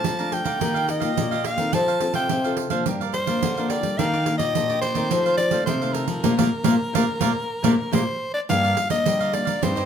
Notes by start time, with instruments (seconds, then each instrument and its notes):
Already playing: nylon-string guitar F3 A3 D4, soprano saxophone A5
0.04 nylon-string guitar F2 F3, cavaquinho A4 D5 F5 A#5, pandeiro
0.19 nylon-string guitar F3 A3 D4, cavaquinho D5 F5 A#5, pandeiro
0.32 soprano saxophone G5, pandeiro
0.45 nylon-string guitar D3, cavaquinho D5 F5 A#5, pandeiro
0.60 nylon-string guitar D#3 A#3 F4 G4, cavaquinho F4 G4 D#5 F5, pandeiro
0.74 cavaquinho G4 D#5 F5, pandeiro
0.88 soprano saxophone D#5, muted cavaquinho stroke, pandeiro
1.00 nylon-string guitar A#3 F4 G4, cavaquinho G4 D#5 F5, pandeiro
1.17 nylon-string guitar A#2, pandeiro
1.31 nylon-string guitar A#3 F4 G4, cavaquinho G4 D#5 F5, pandeiro
1.44 cavaquinho F4 G4 D#5 F5, soprano saxophone F5, pandeiro
1.58 nylon-string guitar D#3 C4 F4 A4, pandeiro
1.73 nylon-string guitar F3, cavaquinho F4 A4 C5 F5, soprano saxophone A5, pandeiro
1.88 cavaquinho A4 C5 F5, pandeiro
2.00 nylon-string guitar C4 F4 A4, muted cavaquinho stroke, pandeiro
2.14 nylon-string guitar C3, cavaquinho A4 C5 F5, soprano saxophone G5, pandeiro
2.29 nylon-string guitar C3, cavaquinho F4 A4 C5 F5, pandeiro
2.44 nylon-string guitar C4 F4 A4, cavaquinho A4 C5 F5, pandeiro
2.57 pandeiro
2.70 nylon-string guitar F3 A#3 D4, cavaquinho A4 C5 F5, pandeiro
2.86 nylon-string guitar G2 G3, cavaquinho G4 A#4 D5 F5, pandeiro
3.01 cavaquinho A#4 D5 F5, pandeiro
3.13 soprano saxophone C5, muted cavaquinho stroke, pandeiro
3.27 nylon-string guitar F3 A#3 D4, cavaquinho A#4 D5 F5, pandeiro
3.43 nylon-string guitar D3, pandeiro
3.57 nylon-string guitar F3 A#3 D4, cavaquinho A#4 D5 F5, pandeiro
3.70 cavaquinho G4 A#4 D5 F5, soprano saxophone D5, pandeiro
3.83 nylon-string guitar G3, pandeiro
3.98 nylon-string guitar D#3 A#3 D4 G4, cavaquinho D4 G4 D5 D#5, soprano saxophone F5, pandeiro
4.14 cavaquinho G4 D5 D#5, pandeiro
4.26 nylon-string guitar A#3 D4 G4, muted cavaquinho stroke, pandeiro
4.38 nylon-string guitar A#2, cavaquinho G4 D5 D#5, soprano saxophone D#5, pandeiro
4.54 nylon-string guitar A#2, cavaquinho D4 G4 D5 D#5, pandeiro
4.69 nylon-string guitar A#3 D4 G4, cavaquinho G4 D5 D#5, pandeiro
4.81 soprano saxophone C5, pandeiro
4.95 nylon-string guitar D#3 A3 C4, cavaquinho G4 D5 D#5, pandeiro
5.11 nylon-string guitar F2 F3, cavaquinho D#4 A4 C5 F5, pandeiro
5.26 cavaquinho A4 C5 F5, pandeiro
5.37 soprano saxophone D5, muted cavaquinho stroke, pandeiro
5.51 nylon-string guitar D#3 A3 C4, cavaquinho A4 C5 F5, pandeiro
5.66 nylon-string guitar C3, soprano saxophone C5, pandeiro
5.81 nylon-string guitar D#3 A3 C4, cavaquinho A4 C5 F5, pandeiro
5.93 cavaquinho D#4 A4 C5 F5, soprano saxophone A#4, pandeiro
6.08 nylon-string guitar F3, pandeiro
6.23 nylon-string guitar A#2 F3 A3 A#3, cavaquinho A#4 D5 F5, pandeiro
6.37 nylon-string guitar A#2 F3 A3 A#3, cavaquinho A#4 D5 F5, pandeiro
6.63 nylon-string guitar A#2 F3 A3 A#3, cavaquinho A#4 D5 F5, pandeiro
6.93 nylon-string guitar A#2 F3 A3 A#3, cavaquinho A#4 D5 F5, pandeiro
7.19 nylon-string guitar A#2 F3 A3 A#3, cavaquinho A#4 D5 F5, pandeiro
7.63 nylon-string guitar A#2 F3 A3 A#3, cavaquinho A#4 D5 F5, pandeiro
7.91 nylon-string guitar A#2 F3 A3 A#3, cavaquinho A#4 D5 F5, soprano saxophone C5, pandeiro
8.34 soprano saxophone D5
8.49 nylon-string guitar G2 F3 A#3 D4, cavaquinho G4 A#4 D5 F5, soprano saxophone F5, pandeiro
8.64 cavaquinho A#4 D5 F5, pandeiro
8.76 muted cavaquinho stroke, pandeiro
8.89 nylon-string guitar F3 A#3, cavaquinho A#4 D5 F5, soprano saxophone D#5, pandeiro
9.05 nylon-string guitar D3 G3, cavaquinho G4 A#4 D5 F5, pandeiro
9.20 cavaquinho A#4 D5 F5, pandeiro
9.33 nylon-string guitar F3 A#3 D4, soprano saxophone D5, pandeiro
9.45 cavaquinho A#4 D5 F5, pandeiro
9.62 nylon-string guitar G2 G3 C4 D#4, cavaquinho D#4 G4 C5 D#5, soprano saxophone C5, pandeiro
9.76 nylon-string guitar G2, cavaquinho G4 C5 D#5, pandeiro